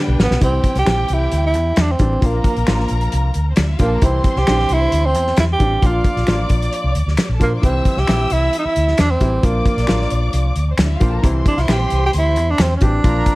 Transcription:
Already playing: grand piano D3 G3 B3 D4, string section D4 B4 G5
0.08 fingered electric bass B1
0.20 fingered electric bass A1, tenor saxophone B3, snare
0.31 fingered electric bass B1, snare
0.41 fingered electric bass C2, grand piano E3 G3 C4 E4, tenor saxophone C4, string section G4 G5, kick, closed hi-hat
0.64 kick, closed hi-hat
0.75 fingered electric bass C2, tenor saxophone G4, snare, closed hi-hat
0.85 fingered electric bass A#1, grand piano E3 G3 C4 G4, finger snap, snare, closed hi-hat
1.08 fingered electric bass C2, closed hi-hat
1.13 tenor saxophone E4
1.32 fingered electric bass D2, closed hi-hat
1.46 tenor saxophone E4
1.54 fingered electric bass E2, closed hi-hat
1.76 fingered electric bass E2, finger snap, snare, closed hi-hat
1.81 tenor saxophone D4
1.92 tenor saxophone C4
1.99 fingered electric bass A1, grand piano E3 G3 C4 D4, kick, closed hi-hat
2.21 fingered electric bass A#1, grand piano F3 A#3 D4 F4, string section A#4 A#5, kick, closed hi-hat
2.26 tenor saxophone A#3
2.44 kick, closed hi-hat
2.56 fingered electric bass A#1, closed hi-hat
2.67 fingered electric bass A1, grand piano F3 A#3 D4 F4, finger snap, snare, closed hi-hat
2.80 snare
2.88 fingered electric bass A#1, closed hi-hat
3.01 closed hi-hat
3.12 fingered electric bass C2, closed hi-hat
3.34 fingered electric bass D2, closed hi-hat
3.50 string section C4 C5
3.56 fingered electric bass D2, string section D4 D5, finger snap, snare, closed hi-hat
3.65 string section E4 E5
3.73 string section F4 F5
3.79 fingered electric bass A#1, grand piano F3 A#3 D4 F4, tenor saxophone A#3, string section G4 G5, kick, closed hi-hat
3.87 string section A4 A5
3.94 string section A#4 A#5
4.02 fingered electric bass C2, grand piano E3 G3 C4 E4, tenor saxophone C4, string section C5 C6, kick, closed hi-hat
4.24 kick, closed hi-hat
4.36 fingered electric bass C2, tenor saxophone G4, snare
4.47 fingered electric bass A#1, grand piano D3 G3 C4 D4, finger snap, snare, closed hi-hat
4.52 grand piano E3
4.59 snare
4.69 fingered electric bass C2, closed hi-hat
4.73 tenor saxophone E4
4.92 fingered electric bass D2, closed hi-hat
5.06 tenor saxophone C4
5.15 fingered electric bass E2, closed hi-hat
5.27 snare
5.37 fingered electric bass E2, tenor saxophone E4, finger snap, snare, closed hi-hat
5.53 tenor saxophone G4
5.59 fingered electric bass A1, grand piano E3 G3 C4 D4, kick, closed hi-hat
5.82 fingered electric bass A#1, grand piano F3 A#3 D4 F4, string section D5 D6, kick, closed hi-hat
5.86 tenor saxophone F4
6.04 kick, closed hi-hat
6.17 fingered electric bass A#1, snare, closed hi-hat
6.27 fingered electric bass A1, grand piano F3 A#3 D4 F4, finger snap, snare, closed hi-hat
6.49 fingered electric bass A#1, kick, closed hi-hat
6.62 closed hi-hat
6.73 closed hi-hat
6.84 fingered electric bass C2
6.95 fingered electric bass D2, closed hi-hat
7.07 fingered electric bass D2, snare
7.17 finger snap, muted fingered electric bass stroke, snare, closed hi-hat
7.29 fingered electric bass A#1
7.34 string section A4 A5
7.40 fingered electric bass A#2, grand piano F3 A#3 D4 F4, tenor saxophone A#3, string section A#4 A#5, kick, closed hi-hat
7.48 string section C5 C6
7.56 string section D5 D6
7.62 fingered electric bass C2, grand piano E3 G3 C4 E4, tenor saxophone C4, string section E5 E6, kick, closed hi-hat
7.85 kick, closed hi-hat
7.97 fingered electric bass C2, tenor saxophone G4, snare
8.07 fingered electric bass A#1, grand piano E3 G3 C4 E4, finger snap, snare, closed hi-hat
8.30 fingered electric bass C2, tenor saxophone E4, closed hi-hat
8.53 closed hi-hat
8.59 tenor saxophone D#4
8.65 tenor saxophone E4, muted fingered electric bass stroke
8.76 fingered electric bass D2, closed hi-hat
8.88 snare
8.98 fingered electric bass E2, tenor saxophone D4, finger snap, snare, closed hi-hat
9.11 tenor saxophone C4
9.20 fingered electric bass A1, grand piano E3 G3 C4 E4, kick, closed hi-hat
9.43 fingered electric bass A#1, grand piano F3 A#3 D4 F4, tenor saxophone A#3, string section D5 D6, kick, closed hi-hat
9.65 kick, closed hi-hat
9.77 fingered electric bass A#1, snare, closed hi-hat
9.87 fingered electric bass A1, grand piano F3 A#3 D4 F4, finger snap, snare, closed hi-hat
10.01 snare
10.10 fingered electric bass A#1, closed hi-hat
10.33 fingered electric bass C2, closed hi-hat
10.56 fingered electric bass D2, closed hi-hat
10.71 string section C4 C5
10.78 fingered electric bass D2, string section D4 D5, finger snap, snare, closed hi-hat
10.85 string section E4 E5
10.95 string section F4 F5
11.00 fingered electric bass A#1, grand piano F3 A#3 D4 F4, string section G4 G5, kick, closed hi-hat
11.09 string section A4 A5
11.17 string section A#4 A#5
11.22 fingered electric bass C2, grand piano E3 G3 C4 E4, string section C5 C6, kick, closed hi-hat
11.46 tenor saxophone D4, kick, closed hi-hat
11.57 fingered electric bass C2, tenor saxophone E4 F4, snare, closed hi-hat
11.67 fingered electric bass A#1, grand piano E3 G3 C4 G4, tenor saxophone G4, finger snap, snare, closed hi-hat
11.90 fingered electric bass C2, closed hi-hat
12.06 tenor saxophone G4
12.13 fingered electric bass D2, closed hi-hat
12.18 tenor saxophone E4
12.36 fingered electric bass E2, closed hi-hat
12.51 tenor saxophone D4
12.58 fingered electric bass E2, tenor saxophone C4, finger snap, snare, closed hi-hat
12.76 tenor saxophone C#4
12.81 fingered electric bass A1, grand piano E3 G3 C4 G4, tenor saxophone D4, kick, closed hi-hat
13.03 fingered electric bass A#1, grand piano F3 A#3 D4 F4, string section A#4 A#5, kick, closed hi-hat
13.26 kick, closed hi-hat

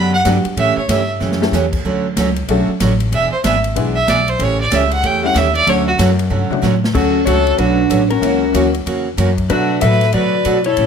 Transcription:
Already playing: upright bass F#2, steel-string acoustic guitar D3 F#3 B3 D4 G4, fiddle B5
0.14 fiddle F#5
0.25 upright bass G2, steel-string acoustic guitar D3 F#3 B3 D4 G4, honky-tonk piano G3 B3 D4 F#4 G4, snare, hi-hat pedal, ride
0.45 muted upright bass stroke, ride
0.57 upright bass A2, steel-string acoustic guitar C#3 E3 A3 C#4 G4, fiddle E5, ride
0.77 fiddle C#5, muted upright bass stroke
0.88 upright bass G2, steel-string acoustic guitar C#3 E3 A3 C#4 G4, fiddle E5, snare, hi-hat pedal, ride
1.20 upright bass F#2, steel-string acoustic guitar C#3 E3 A3 C#4 G4, snare
1.32 snare
1.40 honky-tonk piano A3 C#4 E4 G4 A4, snare
1.52 upright bass E2, steel-string acoustic guitar C#3 E3 A3 C#4 G4, snare, hi-hat pedal
1.73 kick, crash
1.85 upright bass D2, steel-string acoustic guitar D3 F#3 A3 C#4 F#4
2.16 upright bass C#2, steel-string acoustic guitar D3 F#3 A3 C#4 F#4, snare, hi-hat pedal, ride
2.36 ride
2.48 upright bass B1, steel-string acoustic guitar D3 F#3 A3 C#4 F#4, honky-tonk piano A3 C#4 D4 F#4 A4, ride
2.68 muted upright bass stroke
2.80 upright bass A1, steel-string acoustic guitar D3 F#3 A3 C#4 F#4, snare, hi-hat pedal, ride
3.00 ride
3.12 upright bass E1, steel-string acoustic guitar E3 B3 D4 G#4, fiddle E5, ride
3.32 fiddle C5, muted upright bass stroke
3.44 upright bass G#1, steel-string acoustic guitar E3 B3 D4 G#4, fiddle E5, snare, hi-hat pedal, ride
3.64 ride
3.76 upright bass B1, steel-string acoustic guitar E3 B3 D4 G#4, honky-tonk piano G#3 B3 D4 E4 G#4, ride
3.96 fiddle E5
4.07 upright bass B1, steel-string acoustic guitar E3 B3 D4 G#4, fiddle D5, snare, hi-hat pedal, ride
4.28 fiddle C5, ride
4.39 upright bass A1, steel-string acoustic guitar C#3 E3 A3 C#4 G4, ride
4.43 fiddle C#5
4.61 fiddle D5
4.70 upright bass C#2, steel-string acoustic guitar C#3 E3 A3 C#4 G4, snare, hi-hat pedal, ride
4.75 fiddle E5
4.91 fiddle F#5, ride
5.03 upright bass E2, steel-string acoustic guitar C#3 E3 A3 C#4 G4, fiddle G5, ride
5.23 honky-tonk piano G3 A3 C#4 E4 G4, fiddle F#5
5.34 upright bass D#2, steel-string acoustic guitar C#3 E3 A3 C#4 G4, fiddle E5, snare, hi-hat pedal, ride
5.55 fiddle D5, ride
5.66 upright bass D2, steel-string acoustic guitar D3 F#3 A3 C#4 F#4, honky-tonk piano F#3 A3 C#4 D4 F#4, fiddle C#5, ride
5.88 fiddle F#4
5.98 upright bass F#2, steel-string acoustic guitar D3 F#3 A3 C#4 F#4, snare, hi-hat pedal, ride
6.19 ride
6.30 upright bass G2, steel-string acoustic guitar D3 F#3 A3 C#4 F#4, mid tom
6.50 honky-tonk piano F#3 A3 C#4 D4 F#4, muted upright bass stroke, mid tom
6.62 upright bass A2, steel-string acoustic guitar D3 F#3 A3 C#4 F#4, snare, hi-hat pedal
6.84 snare
6.94 upright bass D2, steel-string acoustic guitar D3 F#3 A3 C#4 F#4, electric slide guitar C#4 A4, fiddle F#4, kick, crash
7.26 upright bass C#2, steel-string acoustic guitar D3 F#3 A3 C#4 F#4, honky-tonk piano F#3 A3 C#4 D4 F#4, electric slide guitar F#4 C#5, fiddle A4, hi-hat pedal, ride
7.47 ride
7.58 upright bass B1, steel-string acoustic guitar D3 F#3 A3 C#4 F#4, electric slide guitar D4 B4, fiddle F#4, ride
7.90 upright bass A1, steel-string acoustic guitar D3 F#3 A3 C#4 F#4, hi-hat pedal, ride
8.09 electric slide guitar C#4 A#4, fiddle F#4, ride
8.21 upright bass C#2, steel-string acoustic guitar C#3 E3 A#3 C#4 F#4, honky-tonk piano F#3 A#3 C#4 E4 F#4, ride
8.53 upright bass D2, steel-string acoustic guitar C#3 E3 A#3 C#4 F#4, honky-tonk piano F#3 A#3 C#4 E4 F#4, hi-hat pedal, ride
8.74 ride
8.86 upright bass E2, steel-string acoustic guitar C#3 E3 A#3 C#4 F#4, ride
9.17 upright bass F#2, steel-string acoustic guitar C#3 E3 A#3 C#4 F#4, hi-hat pedal, ride
9.38 kick, ride
9.49 steel-string acoustic guitar B2 F#3 A3 D4 F#4, upright bass B2, honky-tonk piano F#3 A3 B3 D4 F#4, electric slide guitar D4 B4, fiddle F#4, ride
9.81 upright bass A2, steel-string acoustic guitar B2 F#3 A3 D4 F#4, honky-tonk piano F#3 A3 B3 D4 F#4, electric slide guitar A4 E5, fiddle B4, hi-hat pedal, ride
9.92 snare
10.01 snare, ride
10.12 steel-string acoustic guitar B2 F#3 A3 D4 F#4, upright bass D3, electric slide guitar F#4 D5, fiddle B4, ride
10.45 steel-string acoustic guitar B2 F#3 A3 D4 F#4, upright bass B2, hi-hat pedal, ride
10.64 electric slide guitar E4 C#5, fiddle A4, ride
10.77 upright bass A2, steel-string acoustic guitar C#3 E3 A3 C#4 G4, ride

